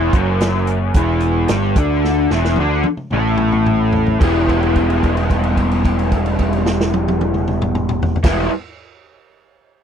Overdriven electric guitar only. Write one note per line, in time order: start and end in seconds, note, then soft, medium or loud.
0.00 0.15 E2 loud
0.00 0.15 E3 loud
0.15 0.95 F#2 loud
0.15 0.95 F#3 loud
0.96 1.49 E2 medium
0.96 1.49 E3 loud
1.50 1.76 G2 medium
1.50 1.77 G3 loud
1.78 2.31 D3 loud
1.78 2.31 D4 medium
2.31 2.57 E2 loud
2.31 2.58 E3 loud
2.59 2.85 D3 medium
2.59 2.85 D4 loud
3.13 4.20 A2 medium
3.13 4.21 A3 medium
4.20 8.16 E3 loud
4.20 8.17 G3 loud
4.20 8.18 B3 medium
4.24 8.18 E4 loud
8.23 8.48 E3 medium
8.23 8.48 G3 loud
8.23 8.49 B3 medium
8.23 8.50 E4 loud